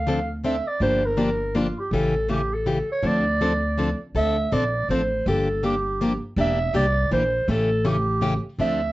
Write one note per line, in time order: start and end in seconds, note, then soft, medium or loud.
0.00 0.59 D2 medium
0.00 0.31 F5 medium
0.07 0.18 D3 medium
0.07 0.18 F3 medium
0.07 0.19 C4 medium
0.07 0.19 D4 medium
0.07 0.19 A4 medium
0.44 0.55 D3 medium
0.44 0.55 F3 medium
0.44 0.55 C4 medium
0.44 0.56 D4 medium
0.44 0.56 A4 medium
0.44 0.69 E5 medium
0.67 0.82 D5 medium
0.80 1.69 G1 medium
0.80 1.02 D3 medium
0.80 1.02 F3 medium
0.80 1.02 A#3 medium
0.80 1.02 D4 medium
0.80 1.02 G4 medium
0.80 1.07 C5 loud
1.05 1.56 A#4 loud
1.17 1.29 D3 medium
1.17 1.29 F3 medium
1.17 1.29 A#3 medium
1.17 1.29 D4 medium
1.17 1.29 G4 medium
1.55 1.66 D3 medium
1.55 1.66 F3 medium
1.55 1.66 A#3 medium
1.55 1.67 D4 medium
1.55 1.77 F4 medium
1.55 1.67 G4 medium
1.79 1.92 G4 medium
1.91 2.80 A1 medium
1.91 2.13 C#3 medium
1.91 2.13 E3 medium
1.91 2.14 A3 medium
1.91 2.14 C#4 medium
1.91 2.14 G4 medium
1.91 2.27 A4 medium
2.29 2.40 C#3 medium
2.29 2.40 E3 medium
2.29 2.40 A3 medium
2.29 2.41 C#4 medium
2.29 2.40 G4 medium
2.29 2.55 G4 medium
2.54 2.90 A4 medium
2.66 2.77 C#3 medium
2.66 2.77 E3 medium
2.66 2.78 A3 medium
2.66 2.78 C#4 medium
2.66 2.78 G4 medium
2.92 3.08 C#5 medium
3.02 3.92 D2 medium
3.02 3.24 D3 medium
3.02 3.24 F3 medium
3.02 3.24 C4 medium
3.02 3.24 D4 medium
3.02 3.25 A4 medium
3.02 4.01 D5 medium
3.41 3.52 D3 medium
3.41 3.52 F3 medium
3.41 3.52 C4 medium
3.41 3.52 D4 medium
3.41 3.52 A4 medium
3.78 3.89 D3 medium
3.78 3.89 F3 medium
3.78 3.89 C4 medium
3.78 3.89 D4 medium
3.78 3.89 A4 medium
4.15 4.44 D2 medium
4.15 4.36 D3 medium
4.15 4.36 F3 medium
4.15 4.36 C4 medium
4.15 4.36 D4 medium
4.15 4.36 A4 medium
4.15 4.55 E5 loud
4.52 4.83 A#1 medium
4.52 4.63 D3 medium
4.52 4.63 F3 medium
4.52 4.63 C4 medium
4.52 4.63 D4 medium
4.52 4.63 A4 medium
4.52 4.90 D5 medium
4.89 5.20 A1 medium
4.89 5.00 D3 medium
4.89 5.01 F3 medium
4.89 5.01 C4 medium
4.89 5.01 D4 medium
4.89 5.01 A4 medium
4.89 5.24 C5 medium
5.26 6.15 G1 medium
5.26 5.47 D3 medium
5.26 5.47 F3 medium
5.26 5.47 A#3 medium
5.26 5.48 D4 medium
5.26 5.47 G4 medium
5.26 5.62 A4 medium
5.63 5.74 D3 medium
5.63 5.74 F3 medium
5.63 5.74 A#3 medium
5.63 5.74 D4 medium
5.63 5.74 G4 medium
5.63 6.19 G4 medium
6.01 6.11 D3 medium
6.01 6.11 F3 medium
6.01 6.12 A#3 medium
6.01 6.12 D4 medium
6.01 6.12 G4 medium
6.36 6.66 E1 medium
6.36 6.58 E3 medium
6.36 6.58 A#3 medium
6.36 6.58 D4 medium
6.36 6.58 G4 medium
6.36 6.73 E5 loud
6.74 7.05 C2 medium
6.74 6.85 E3 medium
6.74 6.85 A#3 medium
6.74 6.85 D4 medium
6.74 6.85 G4 medium
6.74 7.09 D5 loud
7.11 7.43 A#1 medium
7.11 7.22 E3 medium
7.11 7.22 A#3 medium
7.11 7.23 D4 medium
7.11 7.23 G4 medium
7.11 7.46 C5 medium
7.48 8.37 A1 medium
7.48 7.69 C#3 medium
7.48 7.69 E3 medium
7.48 7.69 A3 medium
7.48 7.69 C#4 medium
7.48 7.70 G4 medium
7.48 7.88 A4 medium
7.85 7.96 C#3 medium
7.85 7.96 E3 medium
7.85 7.96 A3 medium
7.85 7.96 C#4 medium
7.85 7.96 G4 medium
7.85 8.45 G4 medium
8.21 8.33 C#3 medium
8.21 8.33 E3 medium
8.21 8.33 A3 medium
8.21 8.33 C#4 medium
8.21 8.33 G4 medium
8.58 8.92 D2 medium
8.58 8.80 D3 medium
8.58 8.80 F3 medium
8.58 8.80 C4 medium
8.58 8.80 D4 medium
8.58 8.80 A4 medium
8.58 8.92 E5 loud